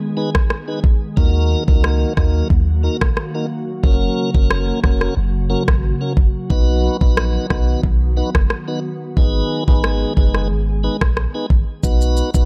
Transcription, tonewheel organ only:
0.17 0.30 B3 medium
0.17 0.30 D#4 medium
0.17 0.30 G#4 medium
0.17 0.30 B4 medium
0.68 0.79 B3 medium
0.68 0.80 D#4 medium
0.68 0.80 G#4 medium
0.68 0.80 B4 medium
1.17 1.63 A#3 medium
1.17 1.64 D#4 medium
1.17 1.64 F#4 medium
1.17 1.64 A#4 loud
1.68 2.13 A#3 medium
1.68 2.13 D#4 medium
1.68 2.13 F#4 medium
1.68 2.13 A#4 medium
2.17 2.48 A#3 medium
2.17 2.48 D#4 medium
2.17 2.48 F#4 medium
2.17 2.48 A#4 medium
2.83 2.97 A#3 medium
2.83 2.97 D#4 medium
2.83 2.97 F#4 medium
2.83 2.97 A#4 medium
3.34 3.46 A#3 medium
3.34 3.46 D#4 medium
3.34 3.46 F#4 medium
3.34 3.46 A#4 medium
3.83 4.30 A#3 medium
3.83 4.30 C#4 medium
3.83 4.30 F#4 medium
3.83 4.30 A#4 loud
4.34 4.80 A#3 medium
4.34 4.80 C#4 medium
4.34 4.80 F#4 medium
4.34 4.80 A#4 medium
4.83 5.14 A#3 medium
4.83 5.14 C#4 medium
4.83 5.15 F#4 medium
4.83 5.15 A#4 medium
5.50 5.63 A#3 medium
5.50 5.63 C#4 medium
5.50 5.63 F#4 medium
5.50 5.63 A#4 medium
6.01 6.13 A#3 medium
6.01 6.13 C#4 medium
6.01 6.13 F#4 medium
6.01 6.13 A#4 medium
6.50 6.97 B3 medium
6.50 6.97 D#4 medium
6.50 6.97 F#4 medium
6.50 6.97 B4 loud
7.01 7.46 B3 medium
7.01 7.46 D#4 medium
7.01 7.46 F#4 medium
7.01 7.47 B4 medium
7.50 7.81 B3 medium
7.50 7.81 D#4 medium
7.50 7.81 F#4 medium
7.50 7.81 B4 medium
8.17 8.30 B3 medium
8.17 8.30 D#4 medium
8.17 8.30 F#4 medium
8.17 8.30 B4 medium
8.68 8.79 B3 medium
8.68 8.80 D#4 medium
8.68 8.80 F#4 medium
8.68 8.80 B4 medium
9.17 9.64 B3 loud
9.17 9.64 D#4 medium
9.17 9.64 G#4 medium
9.17 9.64 B4 loud
9.68 10.13 B3 medium
9.68 10.13 D#4 medium
9.68 10.13 G#4 medium
9.68 10.13 B4 medium
10.17 10.48 B3 medium
10.17 10.48 D#4 medium
10.17 10.48 G#4 medium
10.17 10.48 B4 medium
10.83 10.97 B3 medium
10.83 10.97 D#4 medium
10.83 10.97 G#4 medium
10.83 10.97 B4 medium
11.34 11.46 B3 medium
11.34 11.46 D#4 medium
11.34 11.46 G#4 medium
11.34 11.46 B4 medium
11.83 12.30 B3 medium
11.83 12.30 D#4 medium
11.83 12.30 F#4 medium
11.83 12.31 B4 loud
12.34 12.45 B3 medium
12.34 12.45 D#4 medium
12.34 12.45 F#4 medium
12.34 12.45 B4 medium

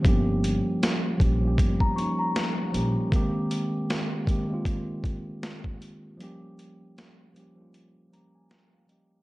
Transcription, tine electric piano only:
0.03 0.79 F3 loud
0.03 0.80 G3 medium
0.03 0.80 A#3 medium
0.07 0.81 C#4 medium
0.07 0.82 G4 loud
1.18 1.34 F3 medium
1.18 1.34 G3 medium
1.18 1.35 A#3 medium
1.22 1.36 C#4 medium
1.22 1.36 G4 medium
1.41 1.80 F3 medium
1.41 1.80 G3 medium
1.41 1.81 A#3 medium
1.46 1.82 C#4 medium
1.46 1.82 G4 medium
1.95 2.48 F3 medium
1.95 2.49 G3 medium
1.95 2.50 A#3 medium
1.99 2.51 C#4 medium
1.99 2.51 D#4 medium
2.71 3.00 F3 medium
2.71 3.01 G3 medium
2.71 3.01 A#3 medium
2.76 3.02 C#4 medium
2.76 3.03 G4 medium
3.10 3.87 D#3 loud
3.10 3.87 G#3 medium
3.10 3.88 A#3 loud
3.14 3.89 C4 loud
3.14 3.90 G4 loud
4.26 4.41 D#3 medium
4.26 4.42 G#3 medium
4.26 4.43 A#3 medium
4.26 4.43 C4 medium
4.31 4.44 G4 medium
4.48 5.47 D#3 medium
4.48 5.48 G#3 medium
4.48 5.48 A#3 medium
4.52 5.49 C4 medium
4.52 5.50 F4 loud
6.17 6.94 F3 loud
6.17 6.95 G3 medium
6.17 6.96 A#3 medium
6.22 6.96 C#4 loud
6.22 6.97 G4 loud
7.34 7.49 F3 medium
7.34 7.50 G3 medium
7.34 7.50 A#3 medium
7.38 7.51 C#4 medium
7.38 7.52 G4 medium
7.56 7.94 F3 medium
7.56 7.95 G3 medium
7.56 7.96 A#3 medium
7.60 7.97 C#4 medium
7.60 7.97 F4 medium
8.10 8.64 F3 medium
8.10 8.64 G3 medium
8.10 8.65 A#3 medium
8.10 8.34 A#5 medium
8.15 8.66 C#4 medium
8.15 8.67 G4 medium
8.35 8.49 G#5 medium
8.74 8.88 F5 medium
8.86 9.15 F3 medium
8.86 9.16 G3 medium
8.86 9.17 A#3 medium
8.86 9.22 D#5 medium
8.90 9.17 C#4 medium
8.90 9.18 G4 medium

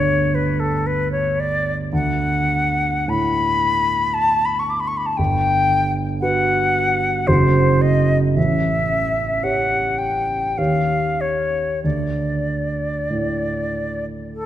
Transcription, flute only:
0.00 0.36 C#5 medium
0.34 0.61 B4 medium
0.59 0.88 A4 medium
0.86 1.11 B4 medium
1.11 1.41 C#5 medium
1.39 1.74 D5 medium
1.93 3.10 F#5 medium
3.09 4.15 B5 medium
4.13 4.46 A5 medium
4.45 4.60 B5 medium
4.59 4.71 C#6 medium
4.69 4.81 D6 medium
4.80 4.88 B5 medium
4.87 4.98 C#6 medium
4.96 5.07 B5 medium
5.05 5.18 A5 medium
5.17 5.92 G5 medium
6.20 7.28 F#5 medium
7.27 7.83 C5 medium
7.81 8.17 D#5 medium
8.34 9.44 E5 medium
9.43 9.99 F#5 medium
9.98 10.59 G5 medium
10.57 11.22 F5 medium
11.20 11.83 C#5 medium
11.83 14.05 D5 medium
14.34 14.46 A4 medium

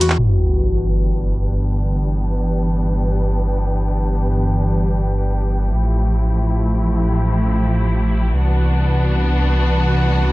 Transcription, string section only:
0.18 5.69 E3 medium
0.18 5.69 B3 medium
0.18 5.69 D4 medium
0.18 8.30 G4 medium
5.74 8.31 F3 medium
5.74 8.31 A3 medium
5.74 8.31 E4 medium
8.33 10.32 E3 medium
8.33 10.32 B3 medium
8.33 10.32 D4 medium
8.33 10.32 F#4 medium

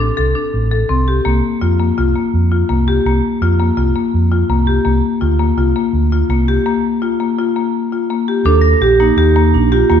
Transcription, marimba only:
0.00 0.14 D4 medium
0.17 0.32 A4 medium
0.35 0.64 D4 medium
0.71 0.86 A4 medium
0.89 1.04 C4 medium
1.08 1.22 G4 medium
1.25 1.54 A#3 medium
1.61 1.76 F4 medium
1.80 1.94 A#3 medium
1.98 2.12 F4 medium
2.16 2.44 A#3 medium
2.52 2.66 F4 medium
2.69 2.84 A#3 medium
2.88 3.02 G4 medium
3.06 3.35 A#3 medium
3.42 3.56 F4 medium
3.59 3.74 A#3 medium
3.77 3.92 F4 medium
3.96 4.24 A#3 medium
4.32 4.46 F4 medium
4.50 4.64 A#3 medium
4.67 4.82 G4 medium
4.85 5.14 A#3 medium
5.21 5.36 F4 medium
5.39 5.54 A#3 medium
5.58 5.72 F4 medium
5.76 6.04 A#3 medium
6.12 6.26 F4 medium
6.30 6.44 A#3 medium
6.48 6.62 G4 medium
6.66 6.94 A#3 medium
7.02 7.16 F4 medium
7.20 7.34 A#3 medium
7.39 7.52 F4 medium
7.56 7.84 A#3 medium
7.92 8.06 F4 medium
8.10 8.24 A#3 medium
8.28 8.42 G4 medium
8.46 8.74 D4 medium
8.82 8.96 G4 medium
9.00 9.14 A#3 medium
9.18 9.32 G4 medium
9.36 9.64 A#3 medium
9.72 9.86 G4 medium
9.90 10.00 A#3 medium

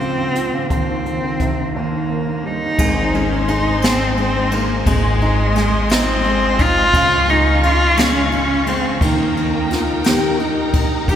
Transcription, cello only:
0.00 0.71 C4 medium
0.72 1.71 C4 medium
1.75 2.48 A#3 medium
2.46 3.16 D#4 medium
3.15 3.50 C#4 medium
3.49 3.83 D#4 medium
3.84 4.15 C4 medium
4.19 4.55 C4 medium
4.53 4.87 A#3 medium
4.88 5.93 G#3 medium
5.91 6.63 C4 loud
6.61 7.31 F4 loud
7.30 7.63 D#4 loud
7.64 8.02 F4 loud
8.00 8.33 C#4 loud
8.34 8.70 C#4 medium
8.68 9.02 C4 medium
9.03 10.01 A#3 medium
11.09 11.16 G4 loud

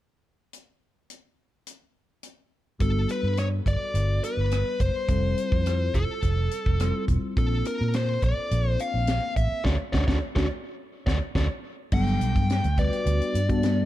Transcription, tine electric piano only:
2.79 5.04 G3 soft
2.79 5.04 B3 soft
2.79 5.05 D4 soft
2.79 5.05 F#4 soft
2.79 5.06 A4 soft
5.08 6.76 G3 soft
5.08 6.76 C4 soft
5.08 6.77 E4 soft
5.08 6.77 F4 soft
5.08 6.77 A4 medium
6.80 7.37 G3 soft
6.80 7.36 C4 soft
6.80 7.38 E4 soft
6.80 7.37 F4 soft
6.80 7.38 C5 soft
7.37 9.61 A#3 medium
7.37 9.61 C4 soft
7.37 9.61 D4 soft
7.37 9.62 F4 soft
7.37 9.62 A4 medium
9.65 9.74 C#4 medium
9.65 9.74 D4 medium
9.65 9.74 F#4 medium
9.94 10.03 C#4 medium
9.94 10.03 D4 medium
9.94 10.03 F#4 medium
10.08 10.17 C#4 medium
10.08 10.17 D4 medium
10.08 10.17 F#4 medium
10.36 10.45 C#4 medium
10.36 10.45 D4 medium
10.36 10.45 F#4 medium
11.07 11.16 C#4 medium
11.07 11.16 D4 medium
11.07 11.16 F#4 medium
11.35 11.45 C#4 medium
11.35 11.45 D4 medium
11.35 11.45 F#4 medium
11.92 12.65 F#3 medium
11.92 12.65 G3 medium
11.92 12.65 B3 medium
11.92 12.65 D4 medium
11.92 12.65 A4 medium
12.78 13.38 G3 medium
12.78 13.38 B3 medium
12.78 13.38 D4 medium
12.78 13.39 F#4 medium
12.78 13.39 B4 medium
13.49 13.85 G3 medium
13.49 13.85 B3 medium
13.49 13.85 D4 medium
13.49 13.85 F#4 medium
13.49 13.85 A4 medium

